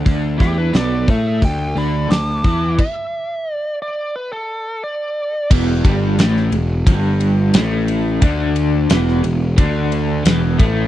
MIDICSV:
0, 0, Header, 1, 6, 480
1, 0, Start_track
1, 0, Tempo, 679502
1, 40, Time_signature, 4, 2, 24, 8
1, 7682, End_track
2, 0, Start_track
2, 0, Title_t, "Lead electric guitar"
2, 0, Program_c, 0, 29
2, 290, Note_on_c, 0, 67, 90
2, 402, Note_off_c, 0, 67, 0
2, 409, Note_on_c, 0, 71, 89
2, 522, Note_off_c, 0, 71, 0
2, 539, Note_on_c, 0, 74, 84
2, 764, Note_off_c, 0, 74, 0
2, 779, Note_on_c, 0, 76, 84
2, 1004, Note_off_c, 0, 76, 0
2, 1021, Note_on_c, 0, 79, 78
2, 1246, Note_off_c, 0, 79, 0
2, 1257, Note_on_c, 0, 83, 74
2, 1484, Note_off_c, 0, 83, 0
2, 1491, Note_on_c, 0, 86, 89
2, 1955, Note_off_c, 0, 86, 0
2, 1972, Note_on_c, 0, 76, 96
2, 2481, Note_off_c, 0, 76, 0
2, 2481, Note_on_c, 0, 74, 96
2, 2669, Note_off_c, 0, 74, 0
2, 2700, Note_on_c, 0, 74, 93
2, 2927, Note_off_c, 0, 74, 0
2, 2937, Note_on_c, 0, 71, 77
2, 3049, Note_off_c, 0, 71, 0
2, 3056, Note_on_c, 0, 69, 84
2, 3402, Note_off_c, 0, 69, 0
2, 3417, Note_on_c, 0, 74, 90
2, 3879, Note_off_c, 0, 74, 0
2, 7682, End_track
3, 0, Start_track
3, 0, Title_t, "Lead electric guitar"
3, 0, Program_c, 1, 29
3, 289, Note_on_c, 1, 57, 75
3, 405, Note_off_c, 1, 57, 0
3, 420, Note_on_c, 1, 62, 69
3, 537, Note_off_c, 1, 62, 0
3, 537, Note_on_c, 1, 69, 74
3, 768, Note_off_c, 1, 69, 0
3, 771, Note_on_c, 1, 68, 69
3, 991, Note_off_c, 1, 68, 0
3, 1015, Note_on_c, 1, 69, 70
3, 1233, Note_off_c, 1, 69, 0
3, 1255, Note_on_c, 1, 74, 61
3, 1474, Note_off_c, 1, 74, 0
3, 1491, Note_on_c, 1, 81, 74
3, 1941, Note_off_c, 1, 81, 0
3, 7682, End_track
4, 0, Start_track
4, 0, Title_t, "Overdriven electric guitar"
4, 0, Program_c, 2, 29
4, 35, Note_on_c, 2, 50, 78
4, 43, Note_on_c, 2, 62, 101
4, 264, Note_off_c, 2, 50, 0
4, 267, Note_on_c, 2, 52, 79
4, 269, Note_off_c, 2, 62, 0
4, 271, Note_on_c, 2, 64, 90
4, 507, Note_off_c, 2, 52, 0
4, 510, Note_off_c, 2, 64, 0
4, 514, Note_on_c, 2, 47, 94
4, 519, Note_on_c, 2, 59, 105
4, 751, Note_off_c, 2, 47, 0
4, 754, Note_off_c, 2, 59, 0
4, 756, Note_on_c, 2, 57, 85
4, 760, Note_on_c, 2, 69, 93
4, 993, Note_off_c, 2, 57, 0
4, 994, Note_off_c, 2, 69, 0
4, 998, Note_on_c, 2, 50, 69
4, 1193, Note_off_c, 2, 50, 0
4, 1240, Note_on_c, 2, 50, 79
4, 1245, Note_on_c, 2, 62, 87
4, 1475, Note_off_c, 2, 50, 0
4, 1478, Note_off_c, 2, 62, 0
4, 1492, Note_on_c, 2, 50, 63
4, 1680, Note_off_c, 2, 50, 0
4, 1730, Note_on_c, 2, 52, 82
4, 1736, Note_on_c, 2, 64, 88
4, 1961, Note_off_c, 2, 52, 0
4, 1964, Note_off_c, 2, 64, 0
4, 3889, Note_on_c, 2, 40, 86
4, 3895, Note_on_c, 2, 52, 93
4, 4122, Note_off_c, 2, 40, 0
4, 4125, Note_off_c, 2, 52, 0
4, 4126, Note_on_c, 2, 43, 86
4, 4132, Note_on_c, 2, 55, 97
4, 4361, Note_off_c, 2, 43, 0
4, 4363, Note_off_c, 2, 55, 0
4, 4373, Note_on_c, 2, 45, 95
4, 4380, Note_on_c, 2, 57, 99
4, 4604, Note_off_c, 2, 45, 0
4, 4607, Note_off_c, 2, 57, 0
4, 4607, Note_on_c, 2, 40, 73
4, 4800, Note_off_c, 2, 40, 0
4, 4850, Note_on_c, 2, 43, 88
4, 4854, Note_on_c, 2, 55, 99
4, 5322, Note_off_c, 2, 43, 0
4, 5324, Note_off_c, 2, 55, 0
4, 5330, Note_on_c, 2, 45, 86
4, 5334, Note_on_c, 2, 57, 100
4, 5800, Note_off_c, 2, 45, 0
4, 5803, Note_off_c, 2, 57, 0
4, 5803, Note_on_c, 2, 50, 95
4, 5812, Note_on_c, 2, 62, 98
4, 6277, Note_off_c, 2, 50, 0
4, 6282, Note_off_c, 2, 62, 0
4, 6283, Note_on_c, 2, 40, 96
4, 6290, Note_on_c, 2, 52, 103
4, 6513, Note_off_c, 2, 40, 0
4, 6520, Note_off_c, 2, 52, 0
4, 6521, Note_on_c, 2, 40, 74
4, 6715, Note_off_c, 2, 40, 0
4, 6760, Note_on_c, 2, 50, 84
4, 6766, Note_on_c, 2, 62, 98
4, 7234, Note_off_c, 2, 50, 0
4, 7237, Note_off_c, 2, 62, 0
4, 7238, Note_on_c, 2, 40, 90
4, 7242, Note_on_c, 2, 52, 96
4, 7473, Note_off_c, 2, 40, 0
4, 7474, Note_on_c, 2, 45, 82
4, 7475, Note_off_c, 2, 52, 0
4, 7479, Note_on_c, 2, 57, 103
4, 7682, Note_off_c, 2, 45, 0
4, 7682, Note_off_c, 2, 57, 0
4, 7682, End_track
5, 0, Start_track
5, 0, Title_t, "Picked electric bass"
5, 0, Program_c, 3, 34
5, 43, Note_on_c, 3, 38, 93
5, 265, Note_off_c, 3, 38, 0
5, 283, Note_on_c, 3, 40, 91
5, 506, Note_off_c, 3, 40, 0
5, 519, Note_on_c, 3, 35, 79
5, 744, Note_off_c, 3, 35, 0
5, 763, Note_on_c, 3, 45, 84
5, 987, Note_off_c, 3, 45, 0
5, 1005, Note_on_c, 3, 38, 65
5, 1228, Note_off_c, 3, 38, 0
5, 1240, Note_on_c, 3, 38, 85
5, 1465, Note_off_c, 3, 38, 0
5, 1475, Note_on_c, 3, 38, 69
5, 1703, Note_off_c, 3, 38, 0
5, 1727, Note_on_c, 3, 40, 83
5, 1950, Note_off_c, 3, 40, 0
5, 3891, Note_on_c, 3, 28, 88
5, 4113, Note_off_c, 3, 28, 0
5, 4131, Note_on_c, 3, 31, 99
5, 4353, Note_off_c, 3, 31, 0
5, 4369, Note_on_c, 3, 33, 93
5, 4592, Note_off_c, 3, 33, 0
5, 4604, Note_on_c, 3, 28, 82
5, 4830, Note_off_c, 3, 28, 0
5, 4850, Note_on_c, 3, 31, 83
5, 5301, Note_off_c, 3, 31, 0
5, 5328, Note_on_c, 3, 33, 84
5, 5779, Note_off_c, 3, 33, 0
5, 5807, Note_on_c, 3, 38, 85
5, 6258, Note_off_c, 3, 38, 0
5, 6291, Note_on_c, 3, 28, 91
5, 6512, Note_off_c, 3, 28, 0
5, 6532, Note_on_c, 3, 28, 83
5, 6751, Note_off_c, 3, 28, 0
5, 6768, Note_on_c, 3, 38, 82
5, 7217, Note_off_c, 3, 38, 0
5, 7246, Note_on_c, 3, 28, 88
5, 7467, Note_off_c, 3, 28, 0
5, 7485, Note_on_c, 3, 33, 93
5, 7682, Note_off_c, 3, 33, 0
5, 7682, End_track
6, 0, Start_track
6, 0, Title_t, "Drums"
6, 43, Note_on_c, 9, 36, 94
6, 44, Note_on_c, 9, 46, 61
6, 113, Note_off_c, 9, 36, 0
6, 115, Note_off_c, 9, 46, 0
6, 283, Note_on_c, 9, 36, 100
6, 288, Note_on_c, 9, 46, 49
6, 296, Note_on_c, 9, 38, 30
6, 354, Note_off_c, 9, 36, 0
6, 358, Note_off_c, 9, 46, 0
6, 367, Note_off_c, 9, 38, 0
6, 520, Note_on_c, 9, 46, 64
6, 529, Note_on_c, 9, 38, 106
6, 591, Note_off_c, 9, 46, 0
6, 600, Note_off_c, 9, 38, 0
6, 763, Note_on_c, 9, 36, 96
6, 764, Note_on_c, 9, 46, 46
6, 834, Note_off_c, 9, 36, 0
6, 835, Note_off_c, 9, 46, 0
6, 1004, Note_on_c, 9, 36, 89
6, 1004, Note_on_c, 9, 46, 66
6, 1074, Note_off_c, 9, 46, 0
6, 1075, Note_off_c, 9, 36, 0
6, 1250, Note_on_c, 9, 46, 45
6, 1320, Note_off_c, 9, 46, 0
6, 1487, Note_on_c, 9, 46, 69
6, 1495, Note_on_c, 9, 38, 112
6, 1557, Note_off_c, 9, 46, 0
6, 1566, Note_off_c, 9, 38, 0
6, 1726, Note_on_c, 9, 36, 95
6, 1726, Note_on_c, 9, 46, 49
6, 1797, Note_off_c, 9, 36, 0
6, 1797, Note_off_c, 9, 46, 0
6, 1968, Note_on_c, 9, 36, 88
6, 1968, Note_on_c, 9, 49, 76
6, 2038, Note_off_c, 9, 36, 0
6, 2039, Note_off_c, 9, 49, 0
6, 3891, Note_on_c, 9, 36, 98
6, 3891, Note_on_c, 9, 49, 108
6, 3962, Note_off_c, 9, 36, 0
6, 3962, Note_off_c, 9, 49, 0
6, 4130, Note_on_c, 9, 36, 107
6, 4131, Note_on_c, 9, 51, 73
6, 4201, Note_off_c, 9, 36, 0
6, 4201, Note_off_c, 9, 51, 0
6, 4370, Note_on_c, 9, 51, 85
6, 4378, Note_on_c, 9, 38, 111
6, 4441, Note_off_c, 9, 51, 0
6, 4449, Note_off_c, 9, 38, 0
6, 4498, Note_on_c, 9, 38, 33
6, 4568, Note_off_c, 9, 38, 0
6, 4607, Note_on_c, 9, 51, 69
6, 4678, Note_off_c, 9, 51, 0
6, 4850, Note_on_c, 9, 36, 104
6, 4852, Note_on_c, 9, 51, 102
6, 4921, Note_off_c, 9, 36, 0
6, 4922, Note_off_c, 9, 51, 0
6, 5089, Note_on_c, 9, 51, 73
6, 5159, Note_off_c, 9, 51, 0
6, 5323, Note_on_c, 9, 51, 107
6, 5332, Note_on_c, 9, 38, 119
6, 5394, Note_off_c, 9, 51, 0
6, 5403, Note_off_c, 9, 38, 0
6, 5566, Note_on_c, 9, 51, 69
6, 5637, Note_off_c, 9, 51, 0
6, 5805, Note_on_c, 9, 51, 92
6, 5807, Note_on_c, 9, 36, 98
6, 5875, Note_off_c, 9, 51, 0
6, 5877, Note_off_c, 9, 36, 0
6, 6044, Note_on_c, 9, 51, 73
6, 6115, Note_off_c, 9, 51, 0
6, 6284, Note_on_c, 9, 51, 100
6, 6293, Note_on_c, 9, 38, 110
6, 6355, Note_off_c, 9, 51, 0
6, 6363, Note_off_c, 9, 38, 0
6, 6415, Note_on_c, 9, 38, 32
6, 6485, Note_off_c, 9, 38, 0
6, 6526, Note_on_c, 9, 51, 72
6, 6596, Note_off_c, 9, 51, 0
6, 6766, Note_on_c, 9, 51, 110
6, 6767, Note_on_c, 9, 36, 106
6, 6837, Note_off_c, 9, 36, 0
6, 6837, Note_off_c, 9, 51, 0
6, 7006, Note_on_c, 9, 51, 74
6, 7077, Note_off_c, 9, 51, 0
6, 7244, Note_on_c, 9, 51, 103
6, 7252, Note_on_c, 9, 38, 113
6, 7314, Note_off_c, 9, 51, 0
6, 7323, Note_off_c, 9, 38, 0
6, 7484, Note_on_c, 9, 36, 104
6, 7486, Note_on_c, 9, 51, 70
6, 7555, Note_off_c, 9, 36, 0
6, 7556, Note_off_c, 9, 51, 0
6, 7682, End_track
0, 0, End_of_file